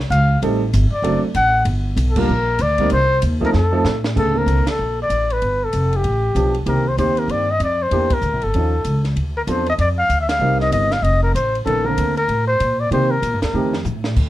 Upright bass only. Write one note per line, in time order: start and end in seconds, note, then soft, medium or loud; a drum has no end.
0.10 0.41 C#2 medium
0.42 0.72 A1 medium
0.74 0.91 G1 medium
0.92 muted upright bass stroke soft
1.02 1.21 F#1 medium
1.35 1.65 A1 medium
1.65 1.96 G1 medium
1.96 2.27 B1 loud
2.29 2.59 A#1 medium
2.59 2.90 D2 medium
2.91 3.22 C2 medium
3.23 3.53 D#2 medium
3.54 3.84 F2 medium
3.85 4.15 A2 medium
4.17 4.46 D2 medium
4.46 4.65 C2 medium
4.67 muted upright bass stroke soft
4.79 5.09 A#1 medium
5.10 5.40 A1 medium
5.42 5.72 G1 medium
5.73 6.03 F1 medium
6.05 6.34 A1 medium
6.35 6.65 B1 medium
6.66 6.96 C2 medium
6.97 7.27 D#2 medium
7.28 7.59 G2 medium
7.60 7.90 F2 medium
7.91 8.21 E2 medium
8.22 8.33 D2 medium
8.33 8.43 A#1 soft
8.44 8.53 G1 medium
8.55 8.84 D#2 medium
8.85 9.15 C#2 medium
9.16 9.46 D2 medium
9.47 9.78 E2 medium
9.78 10.09 F2 medium
10.09 10.39 D2 medium
10.39 10.70 C2 medium
10.72 11.02 G1 medium
11.02 11.33 F1 medium
11.35 11.65 A1 medium
11.66 11.96 A#1 medium
11.97 12.28 D2 medium
12.28 12.59 A2 medium
12.60 12.90 A#2 medium
12.91 13.21 C3 medium
13.22 13.33 A#2 medium
13.33 13.42 G2 medium
13.43 13.52 D#2 medium
13.53 13.84 F2 medium
13.85 14.15 A2 medium
14.16 14.27 D2 medium